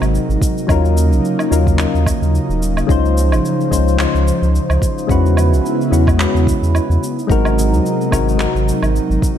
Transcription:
Already playing: C3 F#3 G#3 C4 D#4 F#4 A#4
0.02 G#1, low woodblock, shaker
0.15 shaker
0.29 G#1, shaker
0.42 kick, shaker
0.58 shaker
0.67 D#2 C#3 F#3 A#3 C#4 D#4 F4, kick, low woodblock, shaker
0.71 A#4
0.85 shaker
0.97 shaker
1.12 A#1, shaker
1.25 shaker
1.39 low woodblock, shaker
1.50 D#2 F#3 C#4 D#4 F4 A#4, shaker
1.67 kick, shaker
1.77 F#3 C#4 D#4 F4, clap, shaker
1.81 A#4
1.94 D#2, shaker
2.06 kick, low woodblock, shaker
2.22 D#2, shaker
2.35 shaker
2.49 D#1, shaker
2.62 shaker
2.77 low woodblock, shaker
2.87 C#2 F3 G#3 C#4 D#4 F4 C5, kick, shaker
2.91 C5
3.05 shaker
3.18 shaker
3.32 G#1, low woodblock, shaker
3.45 shaker
3.61 shaker
3.71 C#2 G#3 C#4 D#4 F4 C5, kick, shaker
3.88 shaker
3.97 G#3 C#4 D#4 F4, clap, low woodblock, shaker
4.02 C5
4.14 C#2, shaker
4.28 shaker
4.42 C#2, shaker
4.55 shaker
4.70 C#2, low woodblock, shaker
4.82 kick, shaker
4.98 shaker
5.07 E2 C#3 G#3 B3 C#4 E4 F#4, kick, shaker
5.12 B4
5.26 shaker
5.37 low woodblock, shaker
5.52 B1, shaker
5.66 shaker
5.81 shaker
5.91 E2 G#3 C#4 E4 F#4 B4, shaker
6.07 kick, low woodblock, shaker
6.17 G#3 C#4 E4 F#4, clap, shaker
6.22 B4
6.34 E2, shaker
6.47 kick, shaker
6.62 E2, shaker
6.75 low woodblock, shaker
6.90 E2, shaker
7.02 C3 F#3 G#3 D#4, shaker
7.19 shaker
7.27 G#1 G#3 C4 D#4 F#4, kick, shaker
7.32 A#4
7.45 low woodblock, shaker
7.59 shaker
7.72 D#2, shaker
7.86 shaker
8.01 shaker
8.11 G#1 G#3 C4 D#4 F#4 A#4, kick, low woodblock, shaker
8.29 shaker
8.37 G#3 C4 D#4 F#4, clap, shaker
8.42 A#4
8.55 G#1, shaker
8.68 shaker
8.83 G#1, low woodblock, shaker
8.96 shaker
9.10 G#1, shaker
9.22 kick, shaker

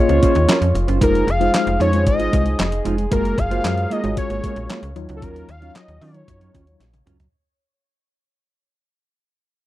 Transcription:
Already playing: C#3 G#3 A#3 F4 G#4 C#5 D#5
0.09 C#2 C#4 F4 C5, closed hi-hat
0.22 C#4 F4 C5, kick, closed hi-hat
0.35 D#2, muted clean electric guitar stroke, closed hi-hat
0.48 C#4 F4 A#4, snare, clap, closed hi-hat
0.61 F2, muted clean electric guitar stroke, closed hi-hat
0.74 F1, muted clean electric guitar stroke, closed hi-hat
0.87 F#1 C#4 F4 C5, closed hi-hat
1.01 F1 F3 G#3 C4 D#4 F4 G#4 A#4 C5, kick, closed hi-hat
1.15 closed hi-hat
1.27 F1 F5, muted clean electric guitar stroke, closed hi-hat
1.40 G#3 D#4 F4 C5, closed hi-hat
1.53 muted clean electric guitar stroke, snare, clap, closed hi-hat
1.67 F1, muted clean electric guitar stroke, closed hi-hat
1.79 F2 G#3 D#4 F4 C#5, closed hi-hat
1.93 G#3 D#4 F4 C5, muted clean electric guitar stroke, closed hi-hat
2.06 G#1 D#5, muted clean electric guitar stroke, kick, closed hi-hat
2.19 G#3 D#4 F4, closed hi-hat
2.32 C2 G#3 D#4 F4, kick, closed hi-hat
2.45 muted clean electric guitar stroke, closed hi-hat
2.58 F1, muted clean electric guitar stroke, snare, clap, closed hi-hat
2.72 muted clean electric guitar stroke, closed hi-hat
2.85 F1 G#3 D#4 F4, closed hi-hat
2.98 muted clean electric guitar stroke, closed hi-hat
3.11 F#1 F#3 G#3 A#3 F4 F#4 A#4 F5, kick, closed hi-hat
3.25 closed hi-hat
3.38 F#1 F5, kick, closed hi-hat
3.50 G#3 A#3 F4 F#4 C5, closed hi-hat
3.64 F#2, muted clean electric guitar stroke, snare, clap, closed hi-hat
3.77 muted clean electric guitar stroke, closed hi-hat
3.90 G#3 A#3 F4 D#5, closed hi-hat
4.03 G#1 G#3 F4 F#4 C#5, muted clean electric guitar stroke, closed hi-hat
4.17 C#5, kick, closed hi-hat
4.30 G#1 G#3 A#3 F#4, closed hi-hat
4.43 G#3 A#3 F#4, kick, closed hi-hat
4.56 A#1, muted clean electric guitar stroke, closed hi-hat
4.69 G#3 A#3 F4, snare, clap, closed hi-hat
4.83 C#2, muted clean electric guitar stroke, closed hi-hat
4.95 D#2 D#3 F#3 C#4 D#4 F4 C#5, muted clean electric guitar stroke, closed hi-hat
5.09 C#2 F#3 C#4 F#4, closed hi-hat
5.16 A4
5.22 D#2 F#3 C#4 F4 A#4, kick, closed hi-hat
5.36 closed hi-hat
5.49 D#2 F5, closed hi-hat
5.61 F#3 C#4 D#4 F4 C#5, closed hi-hat
5.75 D#5, muted clean electric guitar stroke, snare, clap, closed hi-hat
5.88 D#2, muted clean electric guitar stroke, closed hi-hat
6.01 D#3 F#3 C#4 F4 C#5, open hi-hat
6.14 F#3 D#4 F4 C#5, muted clean electric guitar stroke, closed hi-hat
6.27 F#2, muted clean electric guitar stroke, kick, closed hi-hat
6.40 F#3 C#4 F4, closed hi-hat
6.53 D#2 F#3 C#4 F4, kick, closed hi-hat
6.67 muted clean electric guitar stroke, closed hi-hat
6.80 A#1, muted clean electric guitar stroke, snare, closed hi-hat
6.93 muted clean electric guitar stroke, closed hi-hat, high tom
7.06 C#2 F#3 C#4 F4, closed hi-hat, mid tom
7.19 muted clean electric guitar stroke, closed hi-hat, floor tom

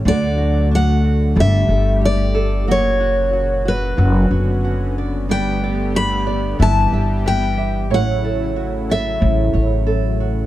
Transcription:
0.05 D2 D3 F#3 A3 D4 F#4 A4 D5
0.38 F#4
0.71 D4 F#5
1.04 F#4
1.36 G1 G3 A3 G4 A4
1.40 E5
1.69 G1 A4
2.01 G4 D5
2.35 A4
2.67 F#1 A#2 C#3 F#3 A#3 F#4
2.71 C#5
3.00 F#4
3.33 F#4
3.65 F#4 B4
3.97 F#1 D3 F#3 B3 C#4 F#4
4.31 F#1 F#4
4.64 F#4
4.98 D5
5.29 G1 D3 G3 A3 G4 B4 D5 G5
5.64 D5
5.95 B4 B5
6.27 D5
6.59 G1 E3 G3 E4 G4 B4 E5 A5
6.93 G1 E5
7.26 B4 G5
7.58 E5
7.90 A1 A2 C#3 F#3 A3 E4 C#5 F#5
8.24 A4
8.56 F#4
8.90 A4 E5
9.20 A1 A2
9.54 A1 C#5
9.87 A4
10.20 F#4

